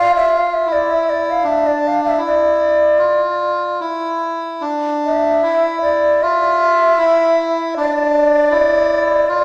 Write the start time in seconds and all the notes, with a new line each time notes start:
Already playing: F4 F5
0.16 E5
0.37 F5
0.54 E5
0.66 E4
0.72 D5
0.90 E5
1.10 D5
1.30 F5
1.44 D4 E5
1.67 D5
1.87 F5
2.04 E5
2.18 E4
2.25 D5
2.99 F4
3.80 E4
4.61 D4
5.05 E5
5.43 E4
5.82 D5
6.22 F4 E5
6.98 E4
7.77 D4 D5
8.51 E4
9.29 F4